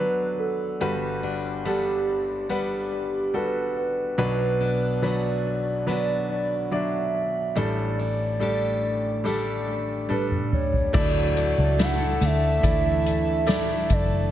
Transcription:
Already playing: D2 D3 F#3 B3 D4 F#4 A4 B4
0.39 A4
0.81 G1 G2 G3 F#4 B4
1.23 D4
1.65 G3 B3 D4 G4 A4 F#5
2.49 G3 B3 D4 G4 B4 F#5
3.34 G3 F#4 A4 B4
3.77 B4
4.18 B1 B2 F#3 D4 B4
4.61 D4
5.02 F#3 B3 D4 F#4 B4 D5
5.86 F#3 B3 D4 F#4 B4 D5
6.30 D5
6.71 F#3 D4 D5 E5
7.55 A1 A2 G3 D4 A4 D5
7.99 D4
8.39 G3 A3 D4 G4 A4
9.24 G3 A3 D4 G4 A4
10.09 G3 D4 A4 B4, high tom
10.31 mid tom
10.52 C#5, mid tom
10.73 floor tom
10.93 D2 F#3 A3 D4 E4 F#4 A4 D5 E5 A5, kick, crash
11.36 D4, closed hi-hat
11.58 C#2
11.79 A3 E4 A4 E5 F#5, snare, closed hi-hat
12.21 D2 A3 D4 A4 E5, closed hi-hat
12.62 D2 E3 A3 E4 D5, kick, closed hi-hat
13.06 closed hi-hat
13.46 A3 E4 D5, snare, closed hi-hat
13.90 F#1 D5, kick, closed hi-hat

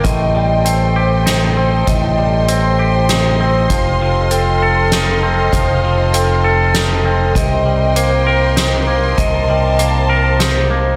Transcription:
Already playing: G5
0.04 A1 A2 A4 D#5 C6, kick, closed hi-hat
0.35 G3
0.65 C4 C5, closed hi-hat
0.96 G4
1.26 D#4 C5, snare, closed hi-hat
1.57 C4
1.87 A1 A2 D#5, kick, closed hi-hat
2.18 G3
2.48 C4 C5, closed hi-hat
2.79 G4
3.09 D#4 C5, snare, closed hi-hat
3.40 C4
3.70 F1 F3 A4 C5 F5, kick, closed hi-hat
4.01 F3
4.31 C4 A4, closed hi-hat
4.62 A4
4.92 D#4 A4, snare, closed hi-hat
5.23 C4
5.52 F1 F3 C5, kick, closed hi-hat
5.84 F3
6.13 C4 A4, closed hi-hat
6.44 A4
6.74 D#4 A4, snare, closed hi-hat
7.05 C4
7.35 C2 C3 A#4 D#5 G5 C6, kick, closed hi-hat
7.65 G3
7.96 A#3 C5, closed hi-hat
8.27 A#4
8.57 D#4 C5, snare, closed hi-hat
8.87 A#3
9.17 C2 C3 D#5 A5, kick, closed hi-hat
9.49 G3
9.79 A#3 C5, closed hi-hat
10.09 A#4
10.40 D#4 C5, snare, closed hi-hat
10.70 A#3

